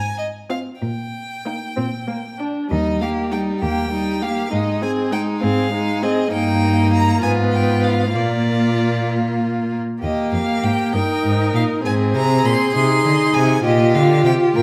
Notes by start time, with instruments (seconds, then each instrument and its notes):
Already playing: cello G#2, violin G#5
0.18 violin D#5
0.50 viola C4, violin F4 F5
0.82 cello A#2, violin G5
1.46 viola A#3, violin D#4
1.77 cello A#2, viola C4
2.08 viola A#3
2.39 viola D4, violin D4
2.70 cello D#2, viola G3, violin D#4 D#5
3.01 viola A#3, violin G4 F5
3.32 viola G3, violin D#4 G5
3.62 cello D#2, viola A#3, violin G4 G5
3.92 viola G3, violin D#4
4.22 viola A#3, violin G4 F5
4.51 cello G#2, viola G#3, violin D#4 D#5
4.82 viola C4, violin G#4 G#5
5.12 viola G#3, violin D#4 G5
5.41 cello G#2, viola C4, violin G#4 F5
5.73 viola G#3, violin D#4
6.03 viola C4, violin G#4 D#5
6.32 cello G2, viola A#3, violin D#4 G5
6.93 violin A#5
7.23 cello G#2, viola B3, violin F4 G#5
7.52 violin G5
7.84 violin F5
8.15 cello A#2, viola A#3, violin F4 D5
10.02 cello D#2, viola A#3, violin G4 D#5
10.33 cello F2, violin F5
10.63 cello G#2, violin G5
10.94 cello G2, viola D#4, violin A#4 G5
11.24 cello G#2
11.54 cello A#2, violin F5
11.85 cello G#2, viola C4, violin G#4 G#5
12.15 cello C3, violin A#5
12.45 cello A#2, violin C6
12.74 cello C3, viola D#4, violin C6
13.04 cello D3
13.34 cello C3, violin G#5
13.64 cello A#2, viola F4, violin G4 D#5
13.94 cello D3, violin F5
14.25 cello C3, violin G5
14.55 cello A#2, violin A#4 G5